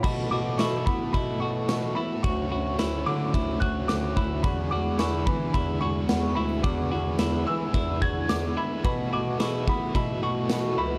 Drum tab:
CC |x-------|--------|--------|--------|
RD |--x-x-x-|x-x-x-x-|x-x-x-x-|x-x-x-x-|
TB |--x---x-|--x---x-|--x---x-|--x---x-|
SD |--o---o-|--o---o-|--o---o-|--o---o-|
BD |o--oo---|o---oo-o|o--oo---|o---oo--|

CC |--------|
RD |x-x-x-x-|
TB |--x---x-|
SD |--o---o-|
BD |o--oo---|